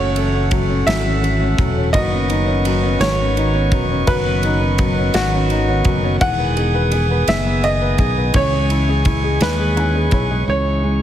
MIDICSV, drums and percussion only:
0, 0, Header, 1, 2, 480
1, 0, Start_track
1, 0, Key_signature, 4, "minor"
1, 0, Tempo, 711744
1, 1309, Time_signature, 6, 3, 24, 8
1, 7433, End_track
2, 0, Start_track
2, 0, Title_t, "Drums"
2, 108, Note_on_c, 9, 51, 43
2, 175, Note_off_c, 9, 51, 0
2, 344, Note_on_c, 9, 51, 50
2, 348, Note_on_c, 9, 36, 75
2, 412, Note_off_c, 9, 51, 0
2, 416, Note_off_c, 9, 36, 0
2, 590, Note_on_c, 9, 51, 68
2, 599, Note_on_c, 9, 38, 108
2, 657, Note_off_c, 9, 51, 0
2, 666, Note_off_c, 9, 38, 0
2, 835, Note_on_c, 9, 51, 31
2, 903, Note_off_c, 9, 51, 0
2, 1069, Note_on_c, 9, 36, 80
2, 1070, Note_on_c, 9, 51, 40
2, 1136, Note_off_c, 9, 36, 0
2, 1138, Note_off_c, 9, 51, 0
2, 1307, Note_on_c, 9, 51, 65
2, 1309, Note_on_c, 9, 36, 98
2, 1375, Note_off_c, 9, 51, 0
2, 1376, Note_off_c, 9, 36, 0
2, 1549, Note_on_c, 9, 51, 42
2, 1617, Note_off_c, 9, 51, 0
2, 1788, Note_on_c, 9, 51, 50
2, 1856, Note_off_c, 9, 51, 0
2, 2029, Note_on_c, 9, 51, 61
2, 2038, Note_on_c, 9, 38, 107
2, 2097, Note_off_c, 9, 51, 0
2, 2105, Note_off_c, 9, 38, 0
2, 2273, Note_on_c, 9, 51, 34
2, 2341, Note_off_c, 9, 51, 0
2, 2506, Note_on_c, 9, 51, 36
2, 2507, Note_on_c, 9, 36, 81
2, 2573, Note_off_c, 9, 51, 0
2, 2575, Note_off_c, 9, 36, 0
2, 2747, Note_on_c, 9, 51, 66
2, 2748, Note_on_c, 9, 36, 101
2, 2814, Note_off_c, 9, 51, 0
2, 2816, Note_off_c, 9, 36, 0
2, 2987, Note_on_c, 9, 51, 42
2, 3054, Note_off_c, 9, 51, 0
2, 3226, Note_on_c, 9, 51, 48
2, 3229, Note_on_c, 9, 36, 85
2, 3293, Note_off_c, 9, 51, 0
2, 3297, Note_off_c, 9, 36, 0
2, 3465, Note_on_c, 9, 51, 68
2, 3474, Note_on_c, 9, 38, 101
2, 3533, Note_off_c, 9, 51, 0
2, 3542, Note_off_c, 9, 38, 0
2, 3708, Note_on_c, 9, 51, 35
2, 3776, Note_off_c, 9, 51, 0
2, 3942, Note_on_c, 9, 51, 41
2, 3946, Note_on_c, 9, 36, 86
2, 4010, Note_off_c, 9, 51, 0
2, 4014, Note_off_c, 9, 36, 0
2, 4188, Note_on_c, 9, 51, 66
2, 4189, Note_on_c, 9, 36, 105
2, 4256, Note_off_c, 9, 36, 0
2, 4256, Note_off_c, 9, 51, 0
2, 4429, Note_on_c, 9, 51, 41
2, 4497, Note_off_c, 9, 51, 0
2, 4664, Note_on_c, 9, 51, 49
2, 4732, Note_off_c, 9, 51, 0
2, 4907, Note_on_c, 9, 51, 67
2, 4916, Note_on_c, 9, 38, 110
2, 4975, Note_off_c, 9, 51, 0
2, 4984, Note_off_c, 9, 38, 0
2, 5150, Note_on_c, 9, 51, 35
2, 5217, Note_off_c, 9, 51, 0
2, 5384, Note_on_c, 9, 51, 42
2, 5386, Note_on_c, 9, 36, 84
2, 5451, Note_off_c, 9, 51, 0
2, 5454, Note_off_c, 9, 36, 0
2, 5623, Note_on_c, 9, 51, 69
2, 5627, Note_on_c, 9, 36, 107
2, 5691, Note_off_c, 9, 51, 0
2, 5694, Note_off_c, 9, 36, 0
2, 5868, Note_on_c, 9, 51, 45
2, 5935, Note_off_c, 9, 51, 0
2, 6103, Note_on_c, 9, 51, 50
2, 6108, Note_on_c, 9, 36, 79
2, 6171, Note_off_c, 9, 51, 0
2, 6175, Note_off_c, 9, 36, 0
2, 6343, Note_on_c, 9, 51, 66
2, 6352, Note_on_c, 9, 38, 108
2, 6411, Note_off_c, 9, 51, 0
2, 6420, Note_off_c, 9, 38, 0
2, 6589, Note_on_c, 9, 51, 32
2, 6657, Note_off_c, 9, 51, 0
2, 6819, Note_on_c, 9, 51, 39
2, 6825, Note_on_c, 9, 36, 73
2, 6887, Note_off_c, 9, 51, 0
2, 6893, Note_off_c, 9, 36, 0
2, 7433, End_track
0, 0, End_of_file